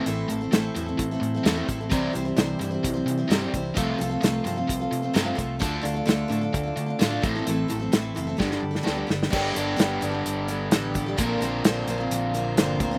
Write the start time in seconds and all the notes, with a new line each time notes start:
Already playing: A4 E5 C6
0.05 A1 A2 E3 A3 C4 E4 A4, closed hi-hat
0.28 A1 A2 E3 A3 C4 E4 A4, closed hi-hat
0.41 A3 C4 E4 A4
0.51 A1 A2 E3 A3 C4 E4 A4, snare, closed hi-hat
0.75 E2 A2 E3 A3 C4 E4, closed hi-hat
0.79 A4
0.86 A3 C4 E4 A4
0.98 A1 A2 E3, kick, closed hi-hat
1.11 A3 C4 E4 A4
1.20 A2 E3, closed hi-hat
1.34 A3 C4 E4 A4
1.43 E2 A2 E3 A3 C4, snare, closed hi-hat
1.47 E4 A4
1.56 A3 C4 E4 A4
1.66 A1 A2 E3 A3 C4 E4, kick, closed hi-hat
1.71 A4
1.81 A3 C4 E4 A4
1.89 C2 C3 E3 G3 C4 E4 G4, kick, closed hi-hat
1.93 C5
2.13 C2 C3 E3 G3 C4 E4 C5, closed hi-hat
2.25 G3 C4 E4 C5
2.36 C2 C3 E3 G3 C4 E4 C5, snare, closed hi-hat
2.59 G2 C3 E3 G3 C4 E4 C5, closed hi-hat
2.71 G3 C4 E4 C5
2.83 C2 C3 E3, kick, closed hi-hat
2.94 G3 C4 E4 C5
3.06 C3 E3, closed hi-hat
3.18 G3 C4 E4 C5
3.28 G2 C3 E3 G3 C4 E4, snare, closed hi-hat
3.32 C5
3.42 G3 C4 E4 C5
3.52 C2 C3 E3 G3 C4 E4, kick, closed hi-hat
3.57 C5
3.74 C2 C3 F3 A3 C4 F4 A4 F5, kick, closed hi-hat
3.78 A4
3.98 C2 C3 F3 A3 C4 F4 A4, closed hi-hat
4.09 C4 F4 A4
4.13 A3
4.21 C2 C3 F3 A3 C4 F4 A4, snare, closed hi-hat
4.44 G2 C3 F3 A3 C4 F4 A4, closed hi-hat
4.56 A3 C4 F4 A4
4.68 C2 C3 F3, kick, closed hi-hat
4.80 A3 C4 F4 A4
4.91 C3 F3, closed hi-hat
5.02 A3 C4 F4 A4
5.13 G2 C3 F3 A3 C4 F4 A4, snare, closed hi-hat
5.24 A3 C4 F4 A4
5.35 C2 C3 F3 A3 C4 F4 A4, kick, closed hi-hat
5.59 D2 D3 A3 D4 F4 A4 F5 D6, kick, closed hi-hat
5.82 D2 D3 A3 D4 F4 A4, closed hi-hat
5.94 D4 F4 A4
6.05 D2 D3 A3 D4 F4 A4, snare, closed hi-hat
6.28 A2 D3 A3 D4 F4 A4
6.32 closed hi-hat
6.41 D4 F4 A4
6.53 D2 D3 A3, kick, closed hi-hat
6.63 F4 A4
6.67 D4
6.76 D3 A3, closed hi-hat
6.86 D4 F4 A4
6.99 A2 D3 A3 D4 F4 A4, snare, closed hi-hat
7.10 D4 F4 A4
7.21 A1 A2 E3 A3 C4 A4 E5 C6, kick, closed hi-hat
7.25 E4 A4
7.35 A3 C4 E4 A4
7.46 A1 A2 E3 A3 C4 E4 A4, closed hi-hat
7.68 A1 A2 E3 A3 C4 E4 A4, closed hi-hat
7.80 A3 C4 E4 A4
7.92 A1 A2 E3 A3 C4 E4 A4, snare, closed hi-hat
8.15 F#1 A2 E3 A3 C4 E4 A4, closed hi-hat
8.27 A3 C4 E4 A4
8.37 G1 G2 D3 G3 B3 D4 G4 A4 G5 B5, kick, snare
8.48 D4 G4 A4, snare
8.62 G2 D3
8.71 D4 G4 A4
8.75 snare
8.81 G2 D3 G3 B3 D4 G4 A4
8.86 D2 G3, snare
8.95 D4 G4 A4
9.07 G1 G2 D3 B3 D4 G4 A4, snare
9.23 snare
9.30 G1 G2 D3 G3 B3 D4 G4 A4 G5 B5, kick, crash
9.35 G4
9.53 G1 B3 D4 G4 A4, closed hi-hat
9.76 G1 G3 B3 D4 G4 A4, snare, closed hi-hat
10.01 G1 B3 D4 G4 A4, closed hi-hat
10.12 D4 G4 A4
10.26 G1, closed hi-hat
10.48 B3 D4 G4 A4, closed hi-hat
10.71 A1 G3 B3 D4 G4 A4, snare, closed hi-hat
10.94 B3 D4 G4 A4, kick, closed hi-hat
11.06 D4 G4 A4
11.16 A#1 A#2 D3 F3 A#3 C4 D4 F4 A#4 C5 D5 C6, kick, closed hi-hat
11.20 A#4
11.40 A#1 A#3 C4 F4 C5, closed hi-hat
11.64 A#1 A#2 D3 A#3 C4 F4 C5, snare, closed hi-hat
11.88 A#1 A#3 C4 F4 C5, closed hi-hat
11.98 A#3 C4 F4 C5
12.11 A#1, closed hi-hat
12.34 A#3 C4 F4 C5, closed hi-hat
12.56 G1 A#2 D3 A#3 C4 F4 C5, snare, closed hi-hat
12.80 D2 A#3 C4 F4 C5, kick, closed hi-hat
12.91 A#3 C4 F4 C5